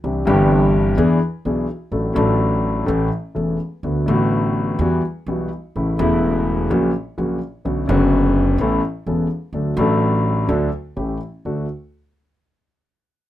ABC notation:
X:1
M:4/4
L:1/8
Q:1/4=126
K:D
V:1 name="Grand piano" clef=bass
[=C,,=C,E,=CDG] [G,,,G,,E,CDG]3 [E,,E,B,D^G] z [B,,,B,,E,B,DG] z | [A,,,A,,F,A,DA] [A,,,A,,F,A,DA]3 [A,,,A,,E,A,CA] z [E,,,E,,E,A,CA] z | [D,,D,A,B,F] [A,,,A,,D,A,B,F]3 [E,,E,G,B,F] z [B,,,B,,E,G,B,F] z | [A,,,A,,C,E,A,E] [E,,,E,,C,E,A,E]3 [^A,,,^A,,C,F,^A,F] z [A,,,A,,C,F,A,F] z |
[B,,,B,,D,B,CF] [F,,,F,,D,B,CF]3 [A,,,A,,E,B,CA] z [E,,,E,,E,B,CA] z | [D,,D,F,A,DA] [A,,,A,,F,A,DA]3 [D,,D,F,A,DA] z [A,,,A,,E,A,CG] z | [D,,A,DF] z6 z |]
V:2 name="Upright bass" clef=bass
=C,, G,,,3 E,, z B,,, z | A,,, A,,,3 A,,, z E,,, z | D,, A,,,3 E,, z B,,, z | A,,, E,,,3 ^A,,, z A,,, z |
B,,, F,,,3 A,,, z E,,, z | D,, A,,,3 D,, z A,,, z | D,, z6 z |]